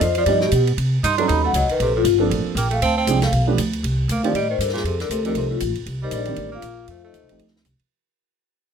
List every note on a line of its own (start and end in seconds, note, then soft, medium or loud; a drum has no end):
0.00 0.26 F2 medium
0.00 0.16 F3 medium
0.00 hi-hat pedal medium
0.00 ride medium
0.04 0.17 C5 medium
0.15 0.25 F3 medium
0.15 0.27 D5 loud
0.15 ride medium
0.26 0.51 G2 medium
0.26 0.40 F3 medium
0.26 0.40 G3 medium
0.26 0.40 B3 medium
0.26 0.40 D4 medium
0.26 0.41 D#4 medium
0.26 0.41 G4 medium
0.26 0.41 D#5 medium
0.26 ride medium
0.41 0.51 B2 medium
0.41 0.49 G4 loud
0.41 snare soft
0.51 0.77 B2 loud
0.51 hi-hat pedal medium
0.51 ride medium
0.67 ride soft
0.77 1.02 C3 medium
0.77 ride medium
1.03 1.28 G2 medium
1.03 1.17 D#4 medium
1.03 1.19 C6 medium
1.03 hi-hat pedal soft
1.03 ride medium
1.18 1.52 F#3 medium
1.18 1.52 B3 medium
1.18 1.52 C#4 medium
1.18 1.27 D4 medium
1.18 1.53 D#4 medium
1.18 1.53 A4 medium
1.18 1.30 A#5 medium
1.18 ride soft
1.28 1.53 D#2 medium
1.28 1.42 D#4 medium
1.28 1.44 B5 medium
1.28 ride medium
1.44 1.54 A3 medium
1.44 1.55 F#5 loud
1.53 1.67 C#2 medium
1.53 1.68 F#3 medium
1.53 1.70 D#5 medium
1.53 hi-hat pedal medium
1.53 ride medium
1.69 1.79 D#3 medium
1.69 1.80 B4 medium
1.69 ride soft
1.80 2.04 A#1 medium
1.80 1.94 C3 medium
1.80 1.95 A4 medium
1.80 ride medium
1.96 2.05 A2 medium
1.96 2.02 F4 loud
2.04 2.29 G1 loud
2.04 hi-hat pedal medium
2.04 ride medium
2.19 2.53 F3 medium
2.19 2.53 A#3 medium
2.19 2.53 C4 medium
2.19 2.54 D4 medium
2.19 2.54 A4 medium
2.30 2.44 A1 medium
2.30 ride medium
2.45 muted upright bass stroke soft
2.55 2.80 A#1 medium
2.55 2.70 A#3 medium
2.55 2.71 G5 medium
2.55 hi-hat pedal medium
2.55 ride medium
2.70 2.80 A3 medium
2.70 2.82 F5 medium
2.70 ride soft
2.81 3.06 D2 medium
2.81 2.95 C4 loud
2.81 2.97 A5 medium
2.81 ride medium
2.97 3.20 C4 medium
2.97 3.21 G5 medium
3.07 3.31 C2 medium
3.07 3.20 F3 medium
3.07 3.20 G#3 medium
3.07 3.20 C4 medium
3.07 3.21 D4 medium
3.07 3.21 G#4 medium
3.07 hi-hat pedal medium
3.07 ride medium
3.22 3.32 A3 medium
3.22 3.29 F5 medium
3.22 snare soft
3.22 ride medium
3.32 3.57 B1 medium
3.32 ride medium
3.47 3.57 F3 medium
3.47 3.57 A3 medium
3.47 3.57 B3 medium
3.47 3.57 D4 medium
3.47 3.57 G4 medium
3.58 3.82 D2 medium
3.58 hi-hat pedal medium
3.58 ride medium
3.73 ride soft
3.83 4.08 C2 medium
3.83 ride medium
4.08 4.33 D2 medium
4.08 4.24 A#3 medium
4.08 4.24 F5 medium
4.08 hi-hat pedal medium
4.08 ride medium
4.23 4.33 D#3 medium
4.23 4.34 F3 medium
4.23 4.33 A#3 medium
4.23 4.33 C4 medium
4.23 4.33 D4 medium
4.23 4.34 G4 medium
4.23 4.35 D5 medium
4.23 ride soft
4.33 4.58 A2 medium
4.33 4.48 G3 medium
4.33 4.49 D#5 medium
4.33 ride medium
4.50 4.59 D#3 medium
4.50 4.60 C5 medium
4.58 4.84 G2 medium
4.58 4.72 D3 medium
4.58 4.74 A#4 medium
4.58 hi-hat pedal medium
4.58 ride medium
4.69 snare soft
4.73 4.83 A#2 medium
4.73 4.85 G#4 medium
4.73 snare soft
4.73 ride soft
4.84 5.09 F2 medium
4.84 4.99 C3 medium
4.84 5.00 A4 medium
4.84 ride medium
5.00 5.10 D3 medium
5.00 5.11 A#4 medium
5.00 snare soft
5.00 ride soft
5.09 5.34 D2 medium
5.09 5.24 C3 medium
5.09 5.26 A4 medium
5.09 hi-hat pedal medium
5.09 ride medium
5.24 5.35 D3 medium
5.24 5.58 F3 medium
5.24 5.59 A3 medium
5.24 5.59 C4 medium
5.24 5.59 D#4 medium
5.24 5.59 G4 medium
5.24 5.36 A#4 loud
5.24 ride soft
5.35 5.60 C2 medium
5.35 5.50 C3 medium
5.35 5.50 A4 medium
5.35 ride medium
5.50 5.60 A2 medium
5.50 5.57 F4 medium
5.60 5.71 A1 medium
5.60 hi-hat pedal medium
5.60 ride medium
5.69 5.76 F1 medium
5.75 ride soft
5.86 6.11 C2 medium
5.86 ride medium
6.02 6.12 G3 medium
6.02 6.13 D#4 medium
6.02 6.13 A#4 medium
6.02 6.13 C5 medium
6.02 6.12 D#5 medium
6.11 6.36 A#1 medium
6.11 6.50 G3 medium
6.11 6.51 D4 medium
6.11 6.51 G4 medium
6.11 6.51 A#4 medium
6.11 6.51 D5 medium
6.11 hi-hat pedal medium
6.11 ride medium
6.25 6.61 D#3 medium
6.25 6.61 A#3 medium
6.25 6.61 C4 medium
6.25 6.61 D4 medium
6.25 6.61 G4 medium
6.25 ride soft
6.36 6.62 A1 medium
6.36 ride medium
6.52 6.86 A#3 medium
6.52 6.87 F4 medium
6.52 6.87 F5 medium
6.62 6.87 A#1 medium
6.62 hi-hat pedal soft
6.62 ride medium
6.88 7.12 F2 medium
6.88 7.03 A3 medium
6.88 7.04 F4 medium
6.88 7.04 A4 medium
6.88 7.04 C5 medium
6.88 7.04 F5 medium
6.88 ride medium
7.04 7.37 A3 medium
7.04 7.39 D#4 medium
7.04 7.39 A4 medium
7.04 7.39 C5 medium
7.04 7.38 D#5 medium
7.13 7.22 D#2 medium
7.13 hi-hat pedal soft
7.13 ride medium
7.22 7.31 C2 medium
7.29 7.39 A1 medium
7.29 7.63 F3 medium
7.29 7.63 A3 medium
7.29 7.64 C4 medium
7.29 7.64 D#4 medium
7.29 7.64 G4 medium
7.29 ride soft
7.39 7.64 D2 medium
7.39 ride medium
7.48 snare soft
7.56 snare soft
7.65 7.79 C2 medium
7.65 hi-hat pedal medium
7.65 ride medium
7.79 ride soft